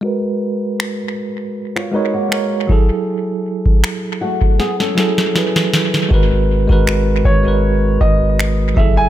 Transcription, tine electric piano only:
X:1
M:4/4
L:1/16
Q:"Swing 16ths" 1/4=79
K:F#
V:1 name="Tine electric piano"
[G,FAB]4- [G,FAB] z4 z [G,FAc] z [G,FAc]2 [F,=EG=A]2- | [F,=EG=A]4 z6 [F,EGA] z [F,EGB]3 z | [G,FAB]2 z [G,FAB]3 z [G,FAB]4- [G,FAB] z2 [F,=EG=A]2 |]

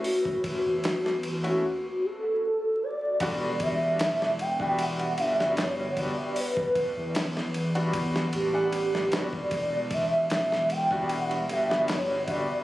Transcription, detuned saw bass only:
X:1
M:4/4
L:1/16
Q:1/4=76
K:Edor
V:1 name="Detuned saw bass" clef=bass
z3 E,,4- E,, z8 | E,,,8- E,,,2 G,,,4- G,,, z | z3 E,,6- E,, A,,,4 G,,,2 | E,,,8- E,,,2 G,,,4- G,,, z |]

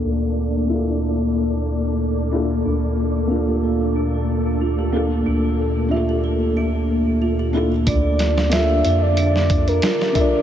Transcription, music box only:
X:1
M:4/4
L:1/16
Q:"Swing 16ths" 1/4=92
K:Dm
V:1 name="Music box"
z16 | D4 F G A z D4 F G A z | D4 F G A z D4 F G A z | D4 F G A z D4 F G A z |]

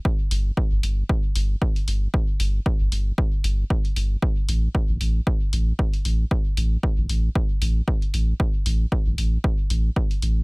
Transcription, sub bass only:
X:1
M:4/4
L:1/16
Q:"Swing 16ths" 1/4=115
K:Aphr
V:1 name="Sub bass" clef=bass
z2 G,,, z2 G,,, G,,, z3 G,,, z3 G,,, z | z2 G,,, z2 G,,, G,,, z3 G,,, z3 G,,, z | z2 A,,, z2 A,,, A,,, z3 A,,, z3 A,,, z | z2 A,,, z2 A,,, A,,, z3 A,,, z3 A,,, z |
z2 A,,, z2 A,,, A,,, z3 A,,, z3 A,,, z |]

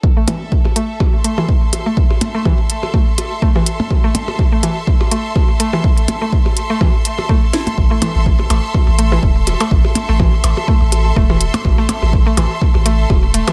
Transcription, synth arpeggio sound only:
X:1
M:4/4
L:1/16
Q:"Swing 16ths" 1/4=124
K:Am
V:1 name="Synth arpeggio sound"
z A, E, z3 A, z3 A, E, z3 A, | z3 A, E, z3 A, z3 A, E, z2 | z A, z3 A, E, z3 A, z3 A, E, | z3 A, z3 A, E, z3 A, z E z |
z A, E, z3 A, z3 A, E, z3 A, | z3 A, E, z3 A, z3 A, E, z2 | z A, z3 A, E, z3 A, z3 A, E, |]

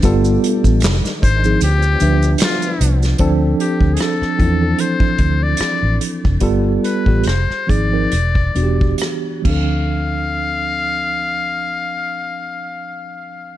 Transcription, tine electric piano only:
X:1
M:4/4
L:1/16
Q:"Swing 16ths" 1/4=72
K:Ddor
V:1 name="Tine electric piano"
[G,B,FA]4 z3 [F,C_E_A] z2 [F,DB=e]4- [F,DBe] z | [F,CDA]4- [F,CDA] z [F,CDE] [E,F,CDA]6 z3 | [G,B,FA]2 z [G,B,FG] z2 [F,C_E_A] [F,CE_B] z2 [=E,=B,D^FG]4 [=F,CD=A]2- | [F,CDA]16 |]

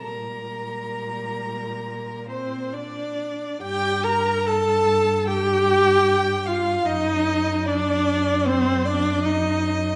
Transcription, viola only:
X:1
M:4/4
L:1/8
Q:1/4=74
K:Gm
V:1 name="Viola"
G,4- G, C D2 | G B A2 G3 F | E2 D2 C D E2 |]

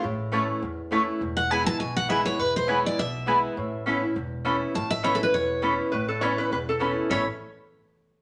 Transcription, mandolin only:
X:1
M:4/4
L:1/8
Q:"Swing" 1/4=204
K:A
V:1 name="Mandolin"
z2 [A,Eca] z3 [A,Eca] z | z2 [B,EBg] z3 [B,EBg] z | z2 [B,EBg] z3 [B,EBg] z | z2 [CAeb] z3 [CAeb] z |
z2 [CAeb] z3 [CAeb] z | z2 [CAeb] z3 [CAeb] z | [CAeb] z6 z |]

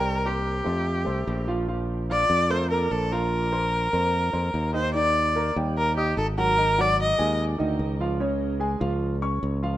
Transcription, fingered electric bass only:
X:1
M:4/4
L:1/8
Q:1/4=147
K:Eblyd
V:1 name="Fingered electric bass" clef=bass
C,,3 F,,2 C,, B,,,2- | B,,,3 F,,3 B,,,2- | B,,,3 F,,2 F,, E,,2- | E,,3 E,,3 _A,,,2- |
_A,,,3 E,,2 D,, _D,,2- | _D,,3 D,,3 D,,2 |]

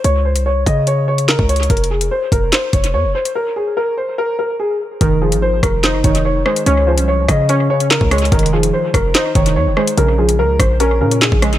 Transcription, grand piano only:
X:1
M:4/4
L:1/8
Q:1/4=145
K:Fm
V:1 name="Grand piano"
d c d e d d B d | B A c B c d d c | B A B c B B A z | B A c B c d d c |
d c d e d d B d | B A c B c d d c | B A B c B B A z |]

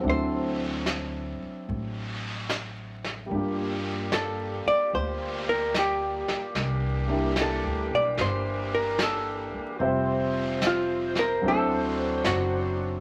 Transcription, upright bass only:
X:1
M:4/4
L:1/8
Q:"Swing" 1/4=74
K:Dm
V:1 name="Upright bass" clef=bass
D,,3 z A,,,4 | G,,,3 z D,,3 z | C,,2- (3C,, D,, =B,,, G,,,3 z | F,,,4 D,,2 ^F,,,2 |]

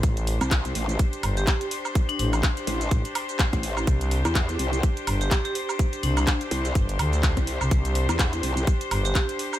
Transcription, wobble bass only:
X:1
M:4/4
L:1/16
Q:"Swing 16ths" 1/4=125
K:C
V:1 name="Wobble bass" clef=bass
z3 C,,3 A,,,2 z8 | z6 A,,,2 z4 z A,,,3 | z3 E,,3 C,,2 z8 | z6 C,,2 z4 z C,,2 z |
z3 E,,3 C,,2 z8 |]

